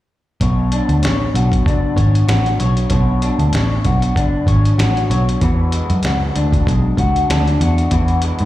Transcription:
0.41 0.80 B1 medium
0.41 2.89 B2 medium
0.41 1.02 C#5 medium
0.41 kick medium
0.41 closed hi-hat medium
0.72 1.66 D4 soft
0.72 closed hi-hat medium
0.89 1.03 D2 medium
0.89 closed hi-hat soft
1.03 1.28 A1 medium
1.03 1.95 C#5 medium
1.03 snare loud
1.03 closed hi-hat medium
1.34 1.60 B1 medium
1.34 2.27 F#4 soft
1.34 closed hi-hat medium
1.52 kick medium
1.52 closed hi-hat medium
1.66 1.91 F#1 medium
1.66 3.22 D4 medium
1.66 kick medium
1.66 closed hi-hat medium
1.96 2.22 G#1 medium
1.96 2.59 C#5 medium
1.96 kick medium
1.96 closed hi-hat medium
2.15 closed hi-hat soft
2.28 2.54 A1 medium
2.28 3.86 F#4 soft
2.28 snare loud
2.28 closed hi-hat medium
2.46 closed hi-hat soft
2.59 2.85 B1 medium
2.59 2.90 C#5 medium
2.59 closed hi-hat medium
2.77 closed hi-hat soft
2.90 3.30 B1 medium
2.90 5.41 B2 medium
2.90 3.53 C#5 medium
2.90 kick medium
2.90 closed hi-hat medium
3.22 4.16 D4 medium
3.22 closed hi-hat medium
3.39 3.50 D2 medium
3.39 closed hi-hat soft
3.53 3.78 A1 medium
3.53 4.47 C#5 medium
3.53 snare loud
3.53 closed hi-hat medium
3.85 4.10 B1 medium
3.85 4.78 F#4 medium
3.85 kick medium
3.85 closed hi-hat medium
4.02 closed hi-hat medium
4.16 4.41 F#1 medium
4.16 5.77 D4 medium
4.16 kick medium
4.16 closed hi-hat medium
4.47 4.72 G#1 medium
4.47 5.09 C#5 medium
4.47 kick medium
4.47 closed hi-hat medium
4.65 closed hi-hat soft
4.78 5.04 A1 medium
4.78 5.42 F#4 medium
4.78 snare loud
4.78 closed hi-hat medium
4.97 closed hi-hat soft
5.10 5.35 B1 medium
5.10 5.49 C#5 medium
5.10 closed hi-hat medium
5.29 closed hi-hat soft
5.41 5.81 E2 medium
5.41 7.91 E3 medium
5.41 6.04 F#4 soft
5.41 kick loud
5.41 closed hi-hat medium
5.72 6.66 G#3 medium
5.72 closed hi-hat medium
5.90 6.01 F#2 medium
5.90 closed hi-hat soft
6.03 6.29 C#2 medium
6.03 6.98 F#4 medium
6.03 snare loud
6.03 closed hi-hat medium
6.36 6.61 D2 medium
6.36 7.29 D4 soft
6.36 closed hi-hat medium
6.52 kick medium
6.52 closed hi-hat medium
6.67 6.92 B1 medium
6.67 8.23 G#3 medium
6.67 kick medium
6.67 closed hi-hat medium
6.97 7.23 C#2 medium
6.97 7.61 F#4 medium
6.97 kick medium
6.97 closed hi-hat medium
7.16 closed hi-hat soft
7.30 7.55 D2 medium
7.30 8.45 D4 medium
7.30 snare loud
7.30 closed hi-hat medium
7.47 closed hi-hat soft
7.61 7.86 E2 medium
7.61 7.92 F#4 medium
7.61 closed hi-hat medium
7.78 closed hi-hat soft
7.91 8.31 E2 medium
7.91 8.45 E3 medium
7.91 8.45 F#4 medium
7.91 kick medium
7.91 closed hi-hat medium
8.08 closed hi-hat soft
8.22 8.45 G#3 medium
8.22 closed hi-hat medium
8.39 8.45 G#2 medium
8.39 closed hi-hat soft

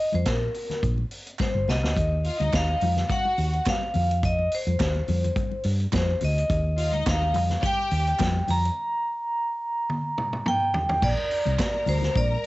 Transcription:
0.00 0.15 D#5 medium
0.12 0.23 F2 medium
0.12 0.28 C5 medium
0.12 closed hi-hat soft
0.12 high conga medium
0.25 0.47 A#1 medium
0.25 0.80 A#4 medium
0.25 kick medium
0.25 snare loud
0.25 clap medium
0.25 closed hi-hat medium
0.54 open hi-hat medium
0.70 snare soft
0.70 closed hi-hat soft
0.70 low conga medium
0.83 1.04 A#1 medium
0.83 kick loud
0.83 closed hi-hat medium
0.98 muted conga soft
1.11 open hi-hat medium
1.27 closed hi-hat soft
1.39 1.67 C5 medium
1.39 kick medium
1.39 snare medium
1.39 clap medium
1.39 high conga medium
1.55 1.64 G1 medium
1.68 1.83 C2 medium
1.68 2.57 D#5 medium
1.68 snare medium
1.68 low conga medium
1.83 1.93 D2 medium
1.83 snare medium
1.97 2.28 D#2 loud
1.97 kick loud
1.97 closed hi-hat medium
1.97 muted conga soft
2.24 2.37 F4 medium
2.24 2.37 F5 medium
2.24 open hi-hat medium
2.39 2.50 D2 medium
2.39 2.78 D#4 medium
2.39 2.79 D#5 medium
2.39 closed hi-hat soft
2.39 high conga medium
2.53 2.74 D#2 loud
2.53 3.13 F5 loud
2.53 kick medium
2.53 snare loud
2.53 clap medium
2.53 closed hi-hat medium
2.69 muted conga soft
2.81 3.02 F2 medium
2.81 open hi-hat medium
2.81 high conga medium
2.81 low conga medium
2.97 snare soft
2.97 closed hi-hat soft
2.97 low conga medium
3.09 3.63 F#4 medium
3.09 3.63 F#5 loud
3.09 3.69 F#5 medium
3.09 kick loud
3.09 closed hi-hat medium
3.09 muted conga soft
3.09 high conga medium
3.26 muted conga soft
3.38 3.59 D#2 medium
3.38 open hi-hat medium
3.53 closed hi-hat soft
3.65 kick loud
3.65 snare loud
3.65 clap medium
3.65 closed hi-hat medium
3.65 muted conga soft
3.65 high conga medium
3.69 4.26 F5 loud
3.81 muted conga soft
3.94 4.47 F2 medium
3.94 open hi-hat medium
3.94 low conga medium
4.11 closed hi-hat medium
4.23 4.53 D#5 medium
4.23 kick loud
4.23 closed hi-hat medium
4.39 muted conga soft
4.52 5.63 C5 medium
4.52 open hi-hat medium
4.67 4.76 F2 medium
4.67 closed hi-hat soft
4.67 high conga medium
4.79 5.00 D#2 medium
4.79 kick medium
4.79 snare loud
4.79 clap medium
4.79 closed hi-hat medium
4.79 muted conga soft
4.96 muted conga soft
5.08 5.29 F2 loud
5.08 open hi-hat medium
5.08 high conga medium
5.08 low conga medium
5.24 closed hi-hat soft
5.24 low conga medium
5.36 kick loud
5.36 closed hi-hat medium
5.36 muted conga soft
5.36 high conga medium
5.52 muted conga soft
5.63 5.85 G2 medium
5.63 open hi-hat medium
5.80 closed hi-hat soft
5.92 6.14 F2 medium
5.92 6.24 C5 medium
5.92 kick loud
5.92 snare loud
5.92 clap medium
5.92 closed hi-hat medium
5.92 high conga medium
6.07 muted conga soft
6.21 6.42 D2 medium
6.21 7.11 D#5 medium
6.21 open hi-hat medium
6.21 low conga medium
6.38 closed hi-hat medium
6.49 6.94 D#2 loud
6.49 kick loud
6.49 closed hi-hat medium
6.49 muted conga soft
6.77 6.89 F4 medium
6.77 6.90 F5 medium
6.77 open hi-hat medium
6.92 7.03 D2 medium
6.92 7.32 D#4 medium
6.92 7.32 D#5 medium
6.92 closed hi-hat soft
6.92 high conga medium
7.06 7.35 D#2 medium
7.06 7.61 F5 medium
7.06 kick medium
7.06 snare loud
7.06 clap medium
7.06 closed hi-hat medium
7.06 muted conga soft
7.22 muted conga soft
7.34 7.56 F2 loud
7.34 open hi-hat medium
7.34 high conga medium
7.34 low conga medium
7.50 snare soft
7.50 closed hi-hat soft
7.50 low conga medium
7.63 8.16 G4 loud
7.63 8.16 G5 loud
7.63 8.52 G5 loud
7.63 kick loud
7.63 closed hi-hat medium
7.63 muted conga soft
7.63 high conga medium
7.91 8.12 D#2 medium
7.91 open hi-hat medium
8.07 closed hi-hat soft
8.19 8.41 F2 medium
8.19 kick medium
8.19 snare medium
8.19 clap medium
8.19 closed hi-hat medium
8.19 muted conga soft
8.19 high conga medium
8.48 8.69 F2 medium
8.48 10.71 A#5 loud
8.48 open hi-hat medium
8.48 low conga medium
8.65 closed hi-hat medium
9.89 high tom medium
10.18 mid tom medium
10.33 mid tom medium
10.46 11.05 G5 loud
10.46 mid tom medium
10.74 floor tom loud
10.89 floor tom loud
11.01 11.13 A#1 loud
11.01 12.46 A#4 medium
11.01 11.90 D5 loud
11.01 12.46 A#5 medium
11.01 kick loud
11.01 crash loud
11.17 muted conga soft
11.31 open hi-hat medium
11.46 11.56 C2 medium
11.46 closed hi-hat soft
11.46 high conga medium
11.59 kick loud
11.59 snare loud
11.59 clap medium
11.59 closed hi-hat medium
11.74 muted conga soft
11.86 12.08 D2 medium
11.86 12.17 C5 loud
11.86 open hi-hat medium
11.86 high conga medium
11.86 low conga medium
12.02 snare soft
12.02 closed hi-hat soft
12.02 low conga medium
12.15 12.36 A#1 loud
12.15 12.46 D5 medium
12.15 kick loud
12.15 closed hi-hat medium
12.15 high conga medium

